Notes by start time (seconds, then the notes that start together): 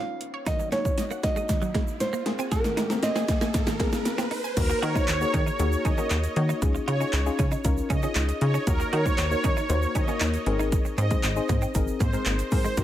Already playing: C#4 D#4 F4 F5, riser
0.21 closed hi-hat
0.34 C#5
0.46 D#3 A#3 D#4 F#4 D#5, kick, snare, closed hi-hat, shaker
0.59 F#3, muted clean electric guitar stroke, shaker
0.72 A#3 C#4 D#4 F#4 C#5, snare, closed hi-hat, shaker
0.85 kick, shaker
0.98 D#5, snare, closed hi-hat, shaker
1.10 A#3 F#5, shaker
1.23 A#3 D#4 F#4 D#5, muted clean electric guitar stroke, kick, snare, closed hi-hat, shaker
1.36 G#3 D#6, shaker
1.49 D#3, muted clean electric guitar stroke, kick, snare, closed hi-hat, shaker
1.62 F#3, shaker
1.74 G#3 A#3, kick, snare, closed hi-hat
1.88 shaker
2.00 C5, snare, closed hi-hat, shaker
2.13 A#3, shaker
2.26 A#3 C4 G#4, muted clean electric guitar stroke, snare, closed hi-hat
2.39 C4 G#5, shaker
2.52 G#2 G#4 A#4, kick, snare, closed hi-hat, shaker
2.64 D#3, muted clean electric guitar stroke, snare, shaker
2.77 G#3 D#4, snare, closed hi-hat, shaker
2.90 A#3 C4 G#4 A#4, snare, shaker
3.03 C4 D#5, snare, closed hi-hat, shaker
3.16 C4 G#4, snare, shaker
3.28 muted clean electric guitar stroke, kick, snare, closed hi-hat, shaker
3.41 A#3 G#5, snare, shaker
3.54 G#2, muted clean electric guitar stroke, kick, snare, closed hi-hat, shaker
3.67 D#3 G#3, snare, shaker
3.80 G#3 A#3 C4 G#4, kick, snare, closed hi-hat
3.93 snare, shaker
4.05 muted clean electric guitar stroke, snare, closed hi-hat, shaker
4.18 C4, snare, shaker
4.31 D#4, open hi-hat
4.44 G#5, shaker
4.57 D#2 A#3 D#4 F#4 A#4, kick, closed hi-hat, crash, shaker
4.70 muted clean electric guitar stroke, shaker
4.82 D#3 F#4 C#5, closed hi-hat
4.95 A#3 D#4 F#4 C5, kick, shaker
5.08 D#2, muted clean electric guitar stroke, clap, closed hi-hat, shaker
5.21 A#3 D#4 F#4 G#4, shaker
5.34 D#3 C#4, kick, closed hi-hat, shaker
5.46 D#4, shaker
5.59 D#2 A#3 D#4 F#4 G#4, muted clean electric guitar stroke, closed hi-hat, shaker
5.72 shaker
5.85 D#3 C#4 D#5, kick, closed hi-hat, shaker
5.98 A#3 C#4 D#4 F#4 A#4, shaker
6.11 D#2 D#4, clap, closed hi-hat, shaker
6.24 closed hi-hat, shaker
6.36 D#3 A#3 D#4 F#4 C#5, muted clean electric guitar stroke, closed hi-hat
6.49 D#4, shaker
6.62 C#2 C#4 D#4 F4 G#4, kick, closed hi-hat, shaker
6.75 muted clean electric guitar stroke, shaker
6.88 C#3 F4 C#5, closed hi-hat
7.00 C#4 D#4 F4 G#4, shaker
7.13 C#2, muted clean electric guitar stroke, clap, closed hi-hat, shaker
7.26 C#4 D#4 F4 G#4, shaker
7.39 C#3 C#4, kick, closed hi-hat, shaker
7.52 D#4, shaker
7.64 C#2 C#4 D#4 F4 A#4, muted clean electric guitar stroke, kick, closed hi-hat, shaker
7.77 shaker
7.90 C#3 C#4 D#5, kick, closed hi-hat, shaker
8.03 C#4 D#4 F4 G#4, shaker
8.15 C#2 D#4, clap, closed hi-hat, shaker
8.29 muted clean electric guitar stroke, closed hi-hat, shaker
8.41 C#3 C#4 D#4 F4 G#4 C#5, closed hi-hat
8.54 C#4, shaker
8.67 D#2 A#3 D#4 F#4 A#4, kick, closed hi-hat, shaker
8.80 muted clean electric guitar stroke, shaker
8.93 D#3 F#4 C#5, closed hi-hat
9.05 A#3 D#4 F#4 C5, kick, shaker
9.18 D#2, muted clean electric guitar stroke, clap, closed hi-hat, shaker
9.31 A#3 D#4 F#4 A#4, shaker
9.44 D#3 C#4, kick, closed hi-hat, shaker
9.57 D#4, shaker
9.69 D#2 A#3 D#4 F#4 C5, muted clean electric guitar stroke, closed hi-hat, shaker
9.82 shaker
9.95 D#3 C#4 D#5, kick, closed hi-hat, shaker
10.08 A#3 C#4 D#4 F#4 A#4, shaker
10.21 D#2 D#4, clap, closed hi-hat, shaker
10.34 closed hi-hat, shaker
10.46 G#1 C4 D#4 G#4 A#4, muted clean electric guitar stroke, closed hi-hat
10.59 D#4, shaker
10.72 kick, closed hi-hat, shaker
10.85 muted clean electric guitar stroke, shaker
10.98 G#2 C4 D#5, closed hi-hat, shaker
11.10 G#3 C4 D#4 G#4 C5, kick, closed hi-hat, shaker
11.23 G#1, muted clean electric guitar stroke, clap, closed hi-hat, shaker
11.36 C4 D#4 G#4 C5, shaker
11.49 G#2 A#3, kick, closed hi-hat, shaker
11.62 C4, shaker
11.75 G#1 C4 D#4 G#4 A#4, muted clean electric guitar stroke, kick, closed hi-hat, shaker
11.87 shaker
12.00 G#2 A#3 C5, kick, closed hi-hat, shaker
12.13 G#3 C4 D#4 G#4 A#4, shaker
12.26 G#1 A#3, clap, closed hi-hat, shaker
12.39 muted clean electric guitar stroke, closed hi-hat, shaker
12.51 G#2 C4 D#4 G#4 A#4 C5, kick, open hi-hat, shaker
12.65 G#3, shaker
12.77 D#2 A#3 D#4 F#4 A#4, kick, closed hi-hat, shaker